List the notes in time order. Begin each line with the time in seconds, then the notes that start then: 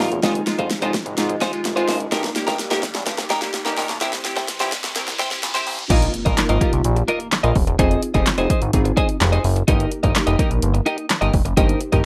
Already playing: F3 A#3 D#4 F4, riser
0.00 A#3 D#4 F4 A#4, snare, open hi-hat
0.11 E1, muted clean electric guitar stroke, closed hi-hat
0.23 F1 C3 D#3 G#3 D#4 F4 C5, kick, snare, closed hi-hat
0.35 muted clean electric guitar stroke, closed hi-hat
0.47 G#3 D#4 F4, muted clean electric guitar stroke, snare, closed hi-hat
0.58 F1 G#3 D#4 F4 C5, kick, closed hi-hat
0.70 muted clean electric guitar stroke, snare, closed hi-hat
0.82 F1 G#3 D#4 F4 C5, closed hi-hat
0.94 kick, snare, closed hi-hat
1.06 G#1, muted clean electric guitar stroke, closed hi-hat
1.17 G#1 G#3 D#4 F4, snare, closed hi-hat
1.29 muted clean electric guitar stroke, closed hi-hat
1.41 G#3 D#4 F4 C5, kick, snare, closed hi-hat
1.53 G#3 D#4 F4, muted clean electric guitar stroke, closed hi-hat
1.64 F1, muted clean electric guitar stroke, snare, closed hi-hat
1.76 G#3 D#4 F4 C5, closed hi-hat
1.88 F#1 G#3 D#4 F4 C5, snare, open hi-hat
2.00 muted clean electric guitar stroke, closed hi-hat
2.12 G1 D#3 G3 A#3 D#4 G4 A#4, kick, snare, closed hi-hat
2.23 muted clean electric guitar stroke, snare, closed hi-hat
2.35 A#3 D#4 G4, muted clean electric guitar stroke, snare, closed hi-hat
2.47 G1 A#3 D#4 G4 A#4, kick, snare, closed hi-hat
2.59 snare, closed hi-hat
2.71 F1 A#3 D#4 G4 A#4, snare, closed hi-hat
2.83 muted clean electric guitar stroke, kick, snare, closed hi-hat
2.95 A#1, muted clean electric guitar stroke, snare, closed hi-hat
3.06 G1 A#3 D#4 G4, kick, snare, closed hi-hat
3.18 muted clean electric guitar stroke, snare, closed hi-hat
3.30 A#3 D#4 G4 A#4, kick, snare, closed hi-hat
3.42 A#3 D#4 G4, muted clean electric guitar stroke, snare, closed hi-hat
3.54 muted clean electric guitar stroke, snare, closed hi-hat
3.65 G1 A#3 D#4 G4 A#4, snare, closed hi-hat
3.77 A#1 A#3 D#4 G4 A#4, snare, open hi-hat
3.89 B1, muted clean electric guitar stroke, snare, closed hi-hat
4.01 C2 E3 C4 E4 G4 C5, kick, snare, closed hi-hat
4.13 muted clean electric guitar stroke, snare, closed hi-hat
4.24 C4 E4 G4, muted clean electric guitar stroke, snare, closed hi-hat
4.36 C2 C4 E4 G4 C5, kick, snare, closed hi-hat
4.48 muted clean electric guitar stroke, snare, closed hi-hat
4.60 A#1 C4 E4 G4 C5, snare, closed hi-hat
4.72 kick, snare, closed hi-hat
4.84 C2, muted clean electric guitar stroke, snare, closed hi-hat
4.96 C2 C4 E4 A#4, snare, closed hi-hat
5.07 muted clean electric guitar stroke, snare, closed hi-hat
5.19 C4 E4 G4 C5, kick, snare, closed hi-hat
5.31 C4 E4 G4, muted clean electric guitar stroke, snare, closed hi-hat
5.43 A#1, muted clean electric guitar stroke, snare, closed hi-hat
5.54 C4 E4 G4 C5, snare, closed hi-hat
5.66 A1 C4 E4 G4 C5, open hi-hat
5.78 muted clean electric guitar stroke, closed hi-hat
5.90 A#1 A#3 D#4 F4 A#4 D#5, kick, closed hi-hat, crash, impact
6.02 closed hi-hat
6.14 muted clean electric guitar stroke, closed hi-hat
6.25 A#1 A#3 F4 A#4 D#5, kick, closed hi-hat
6.37 A#3 D#4 F4 A#4, muted clean electric guitar stroke, snare, clap, closed hi-hat
6.49 G#1 A#3 F4 A#4 D#5, closed hi-hat
6.61 A#3 D#4 F4 G4 A#4 D#5, kick, closed hi-hat
6.73 C2, muted clean electric guitar stroke, closed hi-hat
6.84 A#1, closed hi-hat
6.96 muted clean electric guitar stroke, closed hi-hat
7.08 A#3 F4 A#4 D#5, closed hi-hat
7.20 muted clean electric guitar stroke, closed hi-hat
7.32 muted clean electric guitar stroke, snare, clap, closed hi-hat
7.43 A#1 A#3 F4 A#4 D#5, closed hi-hat
7.55 D#1, kick, open hi-hat
7.67 E1, muted clean electric guitar stroke, closed hi-hat
7.79 F1 C4 D#4 F4 G#4 C5 D#5, kick, closed hi-hat
7.91 closed hi-hat
8.02 muted clean electric guitar stroke, closed hi-hat
8.14 F1 C4 D#4 F4 G4 G#4 C5 D#5, kick, closed hi-hat
8.26 muted clean electric guitar stroke, snare, clap, closed hi-hat
8.38 F1 D#4 G#4 C5 D#5, closed hi-hat
8.50 D#4 G#4 C5 D#5, kick, closed hi-hat
8.62 G#1, muted clean electric guitar stroke, closed hi-hat
8.73 G#1 C4 D#4 F4 G#4, kick, closed hi-hat
8.85 muted clean electric guitar stroke, closed hi-hat
8.97 D#4 G#4 C5 D#5, kick, closed hi-hat
9.09 muted clean electric guitar stroke, closed hi-hat
9.21 F1, muted clean electric guitar stroke, snare, clap, closed hi-hat
9.32 D#4 G#4 C5 D#5, closed hi-hat
9.44 F#1, muted clean electric guitar stroke, open hi-hat
9.56 muted clean electric guitar stroke, closed hi-hat
9.68 G1 A#3 D#4 G4 A#4 D#5, kick, closed hi-hat
9.80 closed hi-hat
9.91 muted clean electric guitar stroke, closed hi-hat
10.03 G1 D#4 G4 A#4 D#5, kick, closed hi-hat
10.15 A#3 D#4 G4 A#4, snare, clap, closed hi-hat
10.27 F1 D#4 G4 A#4 D#5, closed hi-hat
10.38 A#3 D#4 G4 A#4 D#5, kick, closed hi-hat
10.51 A#1, muted clean electric guitar stroke, closed hi-hat
10.62 G1, closed hi-hat
10.74 muted clean electric guitar stroke, closed hi-hat
10.86 D#4 G4 A#4 D#5, closed hi-hat
10.98 muted clean electric guitar stroke, closed hi-hat
11.09 muted clean electric guitar stroke, snare, clap, closed hi-hat
11.21 G1 D#4 G4 A#4 D#5, closed hi-hat
11.33 F1, muted clean electric guitar stroke, kick, open hi-hat
11.45 F#1, muted clean electric guitar stroke, closed hi-hat
11.57 G1 A#3 D#4 G4 A#4 C5 D#5, kick, closed hi-hat
11.69 closed hi-hat
11.81 muted clean electric guitar stroke, closed hi-hat
11.92 G1 A#3 D#4 G4 A#4 D#5, kick, closed hi-hat